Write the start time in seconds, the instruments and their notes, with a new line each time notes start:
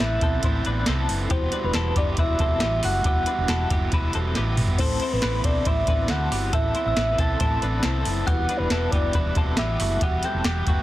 Already playing: synth keys C4 E4 A4 B4, soft synth lead E5, glockenspiel E6
0.00 fingered electric bass A1, overdriven electric guitar A2 A3 B3 C4 E4, clean electric guitar E4 B4
0.21 fingered electric bass B1, overdriven electric guitar B3 C4 E4, clean electric guitar C4 A4, kick, closed hi-hat
0.43 fingered electric bass A1, overdriven electric guitar A3 B3 C4 E4, clean electric guitar E4 C5, kick, closed hi-hat
0.65 fingered electric bass A1, overdriven electric guitar B3 C4 E4, clean electric guitar D4 B4, closed hi-hat
0.86 fingered electric bass C2, overdriven electric guitar A2 A3 B3 C4 E4, clean electric guitar C4 A4, snare, closed hi-hat
1.09 fingered electric bass F#1, overdriven electric guitar B3 C4 E4, open hi-hat
1.29 fingered electric bass E1, overdriven electric guitar E2 E3 G3 B3 F#4, clean electric guitar B3 G4, synth keys E4 F#4 G4, soft synth lead C5, glockenspiel C6, kick, closed hi-hat
1.33 overdriven electric guitar E4
1.52 overdriven electric guitar G3 B3 E4 F#4, clean electric guitar D4 B4, closed hi-hat
1.64 fingered electric bass E1, soft synth lead B4, glockenspiel B5
1.74 fingered electric bass E1, overdriven electric guitar E2 E3 G3 B3 E4 F#4, clean electric guitar E4 A4, snare, closed hi-hat
1.96 fingered electric bass F#1, overdriven electric guitar G3 B3 E4 F#4, clean electric guitar B3 G4, soft synth lead D5, glockenspiel D6, kick, closed hi-hat
2.17 fingered electric bass E1, overdriven electric guitar G3 B3 E4 F#4, clean electric guitar E4 B4, soft synth lead E5, glockenspiel E6, kick, closed hi-hat
2.39 fingered electric bass E1, overdriven electric guitar G3 B3 E4 F#4, clean electric guitar C4 A4, kick, closed hi-hat
2.60 fingered electric bass A1, overdriven electric guitar E2 E3 G3 B3 E4 F#4, clean electric guitar B3 G4, snare, closed hi-hat
2.82 fingered electric bass F#1, overdriven electric guitar G3 B3 E4 F#4, clean electric guitar A3 F#4, soft synth lead F#5, glockenspiel F#6, open hi-hat
3.04 fingered electric bass E1, overdriven electric guitar E2 E3 G3 B3 E4 F#4, clean electric guitar B3 G4, kick, closed hi-hat
3.26 overdriven electric guitar G3 B3 E4 F#4, clean electric guitar D4 B4, closed hi-hat
3.38 fingered electric bass E1
3.48 fingered electric bass E1, overdriven electric guitar E2 E3 G3 B3 E4 F#4, clean electric guitar E4 A4, snare, closed hi-hat
3.69 fingered electric bass F#1, overdriven electric guitar G3 B3 E4 F#4, clean electric guitar B3 G4, kick, closed hi-hat
3.92 fingered electric bass E1, overdriven electric guitar G3 B3 E4 F#4, clean electric guitar E4 B4, kick, closed hi-hat
4.13 fingered electric bass E1, overdriven electric guitar G3 B3 E4 F#4, clean electric guitar C4 A4, closed hi-hat
4.35 fingered electric bass A1, overdriven electric guitar E2 E3 G3 B3 E4 F#4, clean electric guitar B3 G4, snare, closed hi-hat
4.57 fingered electric bass G1, overdriven electric guitar G3 B3 E4 F#4, mid tom, open hi-hat
4.68 floor tom
4.78 fingered electric bass A1, overdriven electric guitar A2 A3 B3 C4 E4, synth keys C4 E4 A4, clean electric guitar C4 A4, soft synth lead C5, glockenspiel C6, kick, crash
5.00 overdriven electric guitar B3 C4 E4, clean electric guitar E4 C5, closed hi-hat
5.12 fingered electric bass A1, soft synth lead B4, glockenspiel B5
5.22 fingered electric bass A1, overdriven electric guitar A2 A3 B3 C4 E4, clean electric guitar E4 B4, snare, closed hi-hat
5.44 fingered electric bass B1, overdriven electric guitar B3 C4 E4, clean electric guitar C4 A4, soft synth lead D5, glockenspiel D6, kick, closed hi-hat
5.65 fingered electric bass A1, overdriven electric guitar A3 B3 C4 E4, clean electric guitar E4 C5, soft synth lead E5, glockenspiel E6, kick, closed hi-hat
5.87 fingered electric bass A1, overdriven electric guitar B3 C4 E4, clean electric guitar D4 B4, kick, closed hi-hat
6.08 fingered electric bass D2, overdriven electric guitar A2 A3 B3 C4 E4, clean electric guitar C4 A4, soft synth lead F#5, glockenspiel F#6, snare, closed hi-hat
6.31 fingered electric bass G1, overdriven electric guitar B3 C4 E4, clean electric guitar B3 G4, open hi-hat
6.53 fingered electric bass A1, overdriven electric guitar A2 A3 B3 C4 E4, clean electric guitar C4 A4, soft synth lead E5, glockenspiel E6, kick, closed hi-hat
6.75 overdriven electric guitar B3 C4 E4, clean electric guitar E4 C5, closed hi-hat
6.85 fingered electric bass A1, soft synth lead E5, glockenspiel E6
6.96 fingered electric bass A1, overdriven electric guitar A2 A3 B3 C4 E4, clean electric guitar E4 B4, snare, closed hi-hat
7.18 fingered electric bass B1, overdriven electric guitar B3 C4 E4, clean electric guitar C4 A4, soft synth lead A5, glockenspiel A6, kick, closed hi-hat
7.40 fingered electric bass A1, overdriven electric guitar A3 B3 C4 E4, clean electric guitar E4 C5, kick, closed hi-hat
7.62 fingered electric bass A1, overdriven electric guitar B3 C4 E4, clean electric guitar D4 B4, closed hi-hat
7.82 fingered electric bass C2, overdriven electric guitar A2 A3 B3 C4 E4, synth keys C4 E4 A4 C5, clean electric guitar C4 A4, snare, closed hi-hat
8.05 fingered electric bass F#1, overdriven electric guitar B3 C4 E4, open hi-hat
8.26 fingered electric bass E1, overdriven electric guitar E2 E3 G3 B3 E4 F#4, clean electric guitar B3 G4, synth keys E4 G4 B4, soft synth lead F#5, glockenspiel F#6, kick, closed hi-hat
8.48 overdriven electric guitar G3 B3 E4 F#4, clean electric guitar D4 B4, closed hi-hat
8.57 fingered electric bass E1, soft synth lead B4, glockenspiel B5
8.69 fingered electric bass E1, overdriven electric guitar E2 E3 G3 B3 E4 F#4, clean electric guitar E4 A4, snare, closed hi-hat
8.91 fingered electric bass F#1, overdriven electric guitar G3 B3 E4 F#4, clean electric guitar B3 G4, soft synth lead D5, glockenspiel D6, kick, closed hi-hat
9.13 fingered electric bass E1, overdriven electric guitar G3 B3 E4 F#4, clean electric guitar E4 B4, kick, closed hi-hat
9.35 fingered electric bass E1, overdriven electric guitar G3 B3 E4 F#4, clean electric guitar C4 A4, kick, closed hi-hat
9.57 fingered electric bass A1, overdriven electric guitar E2 E3 G3 B3 E4 F#4, clean electric guitar B3 G4, soft synth lead E5, glockenspiel E6, snare, closed hi-hat
9.80 fingered electric bass F#1, overdriven electric guitar G3 B3 E4 F#4, clean electric guitar A3 F#4, open hi-hat
10.01 fingered electric bass E1, overdriven electric guitar E2 E3 G3 B3 E4 F#4, clean electric guitar B3 G4, soft synth lead F#5, glockenspiel F#6, kick, closed hi-hat
10.23 overdriven electric guitar G3 B3 E4 F#4, clean electric guitar C4 A4, soft synth lead G5, glockenspiel G6, closed hi-hat
10.34 fingered electric bass E1
10.44 fingered electric bass E1, overdriven electric guitar E2 E3 G3 B3 E4 F#4, clean electric guitar B3 G4, snare, closed hi-hat
10.67 fingered electric bass F#1, overdriven electric guitar G3 B3 E4 F#4, clean electric guitar A3 F#4, kick, closed hi-hat